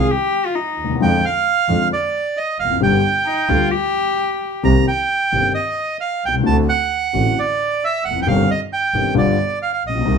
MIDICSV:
0, 0, Header, 1, 5, 480
1, 0, Start_track
1, 0, Key_signature, -3, "minor"
1, 0, Tempo, 453858
1, 1068, Time_signature, 4, 2, 24, 8
1, 7801, Tempo, 447761
1, 10809, End_track
2, 0, Start_track
2, 0, Title_t, "Bandoneon"
2, 0, Program_c, 0, 23
2, 1084, Note_on_c, 0, 79, 68
2, 1322, Note_on_c, 0, 77, 76
2, 1323, Note_off_c, 0, 79, 0
2, 1990, Note_off_c, 0, 77, 0
2, 2042, Note_on_c, 0, 74, 59
2, 2507, Note_on_c, 0, 75, 64
2, 2526, Note_off_c, 0, 74, 0
2, 2727, Note_off_c, 0, 75, 0
2, 2744, Note_on_c, 0, 77, 67
2, 2965, Note_off_c, 0, 77, 0
2, 2994, Note_on_c, 0, 79, 61
2, 3905, Note_off_c, 0, 79, 0
2, 4912, Note_on_c, 0, 82, 69
2, 5138, Note_off_c, 0, 82, 0
2, 5158, Note_on_c, 0, 79, 69
2, 5841, Note_off_c, 0, 79, 0
2, 5864, Note_on_c, 0, 75, 60
2, 6319, Note_off_c, 0, 75, 0
2, 6352, Note_on_c, 0, 77, 65
2, 6604, Note_off_c, 0, 77, 0
2, 6613, Note_on_c, 0, 79, 66
2, 6718, Note_off_c, 0, 79, 0
2, 6837, Note_on_c, 0, 81, 70
2, 6946, Note_off_c, 0, 81, 0
2, 7075, Note_on_c, 0, 78, 75
2, 7818, Note_on_c, 0, 74, 67
2, 7819, Note_off_c, 0, 78, 0
2, 8302, Note_on_c, 0, 76, 65
2, 8304, Note_off_c, 0, 74, 0
2, 8515, Note_off_c, 0, 76, 0
2, 8520, Note_on_c, 0, 78, 66
2, 8688, Note_off_c, 0, 78, 0
2, 8706, Note_on_c, 0, 79, 56
2, 8763, Note_off_c, 0, 79, 0
2, 8766, Note_on_c, 0, 77, 70
2, 9011, Note_off_c, 0, 77, 0
2, 9016, Note_on_c, 0, 75, 69
2, 9121, Note_off_c, 0, 75, 0
2, 9251, Note_on_c, 0, 79, 66
2, 9692, Note_off_c, 0, 79, 0
2, 9735, Note_on_c, 0, 74, 60
2, 10174, Note_off_c, 0, 74, 0
2, 10210, Note_on_c, 0, 77, 63
2, 10311, Note_off_c, 0, 77, 0
2, 10327, Note_on_c, 0, 77, 53
2, 10435, Note_off_c, 0, 77, 0
2, 10474, Note_on_c, 0, 75, 61
2, 10809, Note_off_c, 0, 75, 0
2, 10809, End_track
3, 0, Start_track
3, 0, Title_t, "Cello"
3, 0, Program_c, 1, 42
3, 0, Note_on_c, 1, 68, 64
3, 113, Note_on_c, 1, 67, 76
3, 129, Note_off_c, 1, 68, 0
3, 484, Note_on_c, 1, 65, 56
3, 499, Note_off_c, 1, 67, 0
3, 579, Note_on_c, 1, 63, 49
3, 594, Note_off_c, 1, 65, 0
3, 941, Note_off_c, 1, 63, 0
3, 3447, Note_on_c, 1, 63, 54
3, 3686, Note_on_c, 1, 65, 60
3, 3702, Note_off_c, 1, 63, 0
3, 3924, Note_on_c, 1, 67, 73
3, 3939, Note_off_c, 1, 65, 0
3, 4782, Note_off_c, 1, 67, 0
3, 10809, End_track
4, 0, Start_track
4, 0, Title_t, "Grand piano"
4, 0, Program_c, 2, 0
4, 891, Note_on_c, 2, 38, 35
4, 948, Note_on_c, 2, 39, 42
4, 949, Note_off_c, 2, 38, 0
4, 1006, Note_on_c, 2, 40, 54
4, 1008, Note_off_c, 2, 39, 0
4, 1059, Note_on_c, 2, 50, 41
4, 1062, Note_on_c, 2, 53, 50
4, 1064, Note_on_c, 2, 56, 41
4, 1066, Note_on_c, 2, 41, 46
4, 1067, Note_off_c, 2, 40, 0
4, 1070, Note_on_c, 2, 65, 46
4, 1265, Note_off_c, 2, 50, 0
4, 1267, Note_off_c, 2, 56, 0
4, 1268, Note_off_c, 2, 41, 0
4, 1268, Note_off_c, 2, 53, 0
4, 1270, Note_off_c, 2, 65, 0
4, 1789, Note_on_c, 2, 53, 39
4, 1791, Note_on_c, 2, 50, 34
4, 1794, Note_on_c, 2, 56, 32
4, 1795, Note_on_c, 2, 65, 38
4, 1797, Note_on_c, 2, 41, 42
4, 1989, Note_off_c, 2, 50, 0
4, 1991, Note_off_c, 2, 56, 0
4, 1992, Note_off_c, 2, 41, 0
4, 1992, Note_off_c, 2, 65, 0
4, 1993, Note_off_c, 2, 53, 0
4, 2800, Note_on_c, 2, 40, 37
4, 2860, Note_off_c, 2, 40, 0
4, 2861, Note_on_c, 2, 41, 39
4, 2920, Note_off_c, 2, 41, 0
4, 2925, Note_on_c, 2, 42, 52
4, 2968, Note_on_c, 2, 31, 44
4, 2969, Note_on_c, 2, 55, 45
4, 2972, Note_on_c, 2, 43, 47
4, 2972, Note_on_c, 2, 50, 45
4, 2973, Note_on_c, 2, 59, 42
4, 2976, Note_on_c, 2, 67, 47
4, 2983, Note_off_c, 2, 42, 0
4, 3175, Note_off_c, 2, 31, 0
4, 3175, Note_off_c, 2, 55, 0
4, 3176, Note_off_c, 2, 43, 0
4, 3177, Note_off_c, 2, 50, 0
4, 3177, Note_off_c, 2, 59, 0
4, 3178, Note_off_c, 2, 67, 0
4, 3692, Note_on_c, 2, 50, 34
4, 3696, Note_on_c, 2, 38, 34
4, 3697, Note_on_c, 2, 59, 28
4, 3698, Note_on_c, 2, 55, 29
4, 3698, Note_on_c, 2, 67, 34
4, 3899, Note_off_c, 2, 50, 0
4, 3900, Note_off_c, 2, 38, 0
4, 3900, Note_off_c, 2, 59, 0
4, 3901, Note_off_c, 2, 55, 0
4, 3901, Note_off_c, 2, 67, 0
4, 4899, Note_on_c, 2, 36, 49
4, 4899, Note_on_c, 2, 51, 42
4, 4901, Note_on_c, 2, 60, 39
4, 4901, Note_on_c, 2, 67, 49
4, 4903, Note_on_c, 2, 48, 48
4, 4906, Note_on_c, 2, 58, 41
4, 5109, Note_off_c, 2, 51, 0
4, 5110, Note_off_c, 2, 36, 0
4, 5110, Note_off_c, 2, 67, 0
4, 5111, Note_off_c, 2, 48, 0
4, 5111, Note_off_c, 2, 60, 0
4, 5113, Note_off_c, 2, 58, 0
4, 5629, Note_on_c, 2, 43, 36
4, 5630, Note_on_c, 2, 51, 31
4, 5632, Note_on_c, 2, 58, 26
4, 5637, Note_on_c, 2, 31, 35
4, 5638, Note_on_c, 2, 67, 34
4, 5639, Note_on_c, 2, 60, 28
4, 5838, Note_off_c, 2, 43, 0
4, 5838, Note_off_c, 2, 51, 0
4, 5839, Note_off_c, 2, 58, 0
4, 5841, Note_off_c, 2, 31, 0
4, 5842, Note_off_c, 2, 67, 0
4, 5843, Note_off_c, 2, 60, 0
4, 6640, Note_on_c, 2, 35, 38
4, 6701, Note_on_c, 2, 36, 37
4, 6710, Note_off_c, 2, 35, 0
4, 6761, Note_on_c, 2, 37, 47
4, 6771, Note_off_c, 2, 36, 0
4, 6802, Note_on_c, 2, 50, 53
4, 6806, Note_on_c, 2, 38, 50
4, 6807, Note_on_c, 2, 57, 40
4, 6809, Note_on_c, 2, 60, 39
4, 6809, Note_on_c, 2, 66, 50
4, 6830, Note_off_c, 2, 37, 0
4, 7022, Note_off_c, 2, 50, 0
4, 7024, Note_off_c, 2, 38, 0
4, 7024, Note_off_c, 2, 57, 0
4, 7025, Note_off_c, 2, 60, 0
4, 7025, Note_off_c, 2, 66, 0
4, 7542, Note_on_c, 2, 60, 30
4, 7543, Note_on_c, 2, 50, 34
4, 7544, Note_on_c, 2, 45, 38
4, 7544, Note_on_c, 2, 57, 31
4, 7547, Note_on_c, 2, 33, 43
4, 7552, Note_on_c, 2, 66, 39
4, 7752, Note_off_c, 2, 50, 0
4, 7752, Note_off_c, 2, 60, 0
4, 7753, Note_off_c, 2, 45, 0
4, 7753, Note_off_c, 2, 57, 0
4, 7754, Note_off_c, 2, 33, 0
4, 7757, Note_off_c, 2, 66, 0
4, 8585, Note_on_c, 2, 40, 39
4, 8641, Note_on_c, 2, 41, 40
4, 8642, Note_off_c, 2, 40, 0
4, 8698, Note_on_c, 2, 42, 53
4, 8700, Note_off_c, 2, 41, 0
4, 8757, Note_on_c, 2, 51, 48
4, 8759, Note_off_c, 2, 42, 0
4, 8759, Note_on_c, 2, 43, 58
4, 8760, Note_on_c, 2, 31, 55
4, 8761, Note_on_c, 2, 55, 44
4, 8762, Note_on_c, 2, 60, 48
4, 8762, Note_on_c, 2, 67, 52
4, 8961, Note_off_c, 2, 51, 0
4, 8962, Note_off_c, 2, 31, 0
4, 8962, Note_off_c, 2, 43, 0
4, 8963, Note_off_c, 2, 55, 0
4, 8963, Note_off_c, 2, 60, 0
4, 8963, Note_off_c, 2, 67, 0
4, 9486, Note_on_c, 2, 51, 33
4, 9486, Note_on_c, 2, 55, 30
4, 9487, Note_on_c, 2, 31, 38
4, 9487, Note_on_c, 2, 43, 44
4, 9491, Note_on_c, 2, 67, 37
4, 9494, Note_on_c, 2, 60, 31
4, 9679, Note_off_c, 2, 55, 0
4, 9680, Note_off_c, 2, 43, 0
4, 9684, Note_off_c, 2, 31, 0
4, 9685, Note_off_c, 2, 51, 0
4, 9687, Note_off_c, 2, 67, 0
4, 9689, Note_off_c, 2, 60, 0
4, 9695, Note_on_c, 2, 55, 52
4, 9696, Note_on_c, 2, 43, 62
4, 9696, Note_on_c, 2, 59, 47
4, 9698, Note_on_c, 2, 50, 56
4, 9700, Note_on_c, 2, 31, 61
4, 9704, Note_on_c, 2, 65, 59
4, 9909, Note_off_c, 2, 55, 0
4, 9910, Note_off_c, 2, 43, 0
4, 9910, Note_off_c, 2, 59, 0
4, 9911, Note_off_c, 2, 31, 0
4, 9911, Note_off_c, 2, 50, 0
4, 9914, Note_off_c, 2, 65, 0
4, 10496, Note_on_c, 2, 33, 37
4, 10557, Note_off_c, 2, 33, 0
4, 10561, Note_on_c, 2, 34, 41
4, 10620, Note_off_c, 2, 34, 0
4, 10622, Note_on_c, 2, 35, 47
4, 10663, Note_on_c, 2, 48, 51
4, 10668, Note_on_c, 2, 55, 43
4, 10670, Note_on_c, 2, 58, 38
4, 10673, Note_on_c, 2, 36, 51
4, 10674, Note_on_c, 2, 63, 48
4, 10680, Note_off_c, 2, 35, 0
4, 10809, Note_off_c, 2, 36, 0
4, 10809, Note_off_c, 2, 48, 0
4, 10809, Note_off_c, 2, 55, 0
4, 10809, Note_off_c, 2, 58, 0
4, 10809, Note_off_c, 2, 63, 0
4, 10809, End_track
5, 0, Start_track
5, 0, Title_t, "Double bass"
5, 0, Program_c, 3, 43
5, 820, Note_on_c, 3, 39, 39
5, 1051, Note_off_c, 3, 39, 0
5, 1057, Note_on_c, 3, 41, 68
5, 1264, Note_off_c, 3, 41, 0
5, 1782, Note_on_c, 3, 41, 47
5, 1985, Note_off_c, 3, 41, 0
5, 2740, Note_on_c, 3, 29, 33
5, 2967, Note_off_c, 3, 29, 0
5, 2973, Note_on_c, 3, 31, 75
5, 3177, Note_off_c, 3, 31, 0
5, 3690, Note_on_c, 3, 38, 44
5, 3897, Note_off_c, 3, 38, 0
5, 4909, Note_on_c, 3, 36, 64
5, 5114, Note_off_c, 3, 36, 0
5, 5634, Note_on_c, 3, 31, 45
5, 5840, Note_off_c, 3, 31, 0
5, 6601, Note_on_c, 3, 36, 31
5, 6827, Note_off_c, 3, 36, 0
5, 6833, Note_on_c, 3, 38, 75
5, 7037, Note_off_c, 3, 38, 0
5, 7553, Note_on_c, 3, 33, 44
5, 7757, Note_off_c, 3, 33, 0
5, 8515, Note_on_c, 3, 29, 38
5, 8753, Note_off_c, 3, 29, 0
5, 8759, Note_on_c, 3, 31, 72
5, 8962, Note_off_c, 3, 31, 0
5, 9481, Note_on_c, 3, 31, 45
5, 9682, Note_off_c, 3, 31, 0
5, 9710, Note_on_c, 3, 31, 72
5, 9917, Note_off_c, 3, 31, 0
5, 10447, Note_on_c, 3, 34, 36
5, 10672, Note_off_c, 3, 34, 0
5, 10679, Note_on_c, 3, 36, 63
5, 10809, Note_off_c, 3, 36, 0
5, 10809, End_track
0, 0, End_of_file